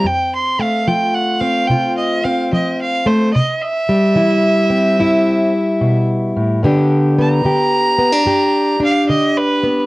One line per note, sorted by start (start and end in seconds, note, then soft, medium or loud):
0.00 1.41 C4 medium
0.04 0.81 F2 medium
0.04 0.32 G5 loud
0.35 0.63 C6 loud
0.59 3.05 A3 medium
0.59 0.89 F5 medium
0.87 1.64 F3 medium
0.87 1.70 F4 medium
0.87 1.16 G5 loud
1.14 1.42 F#5 medium
1.40 2.24 C4 medium
1.40 1.69 F5 loud
1.67 2.47 C3 medium
1.67 1.95 G5 medium
1.71 3.32 F4 medium
1.97 2.25 D#5 medium
2.24 3.32 C4 medium
2.24 2.51 F5 medium
2.53 3.29 F3 medium
2.53 2.79 D#5 medium
2.81 3.08 F5 medium
3.06 3.32 A3 medium
3.06 3.33 C5 medium
3.33 4.12 C3 medium
3.33 3.63 D#5 loud
3.62 6.05 E5 loud
3.89 6.64 G3 medium
4.15 4.93 E3 medium
4.15 4.98 E4 medium
4.70 5.53 C4 medium
4.99 5.76 G2 medium
4.99 6.64 E4 medium
5.81 6.35 B2 medium
6.36 6.65 A2 medium
6.63 7.40 G2 medium
6.63 7.43 D3 medium
6.63 7.18 B3 medium
6.63 7.98 D4 medium
6.63 7.45 G4 medium
7.18 7.97 B3 medium
7.18 8.80 A#5 loud
7.44 8.22 D3 medium
7.44 8.26 G4 medium
7.98 8.12 B3 medium
8.12 8.79 D4 soft
8.26 9.03 G2 medium
8.26 9.86 G4 medium
8.80 9.86 D4 medium
8.84 9.08 F5 loud
9.09 9.86 D3 medium
9.09 9.39 D#5 medium
9.37 9.81 B4 loud
9.64 9.86 B3 medium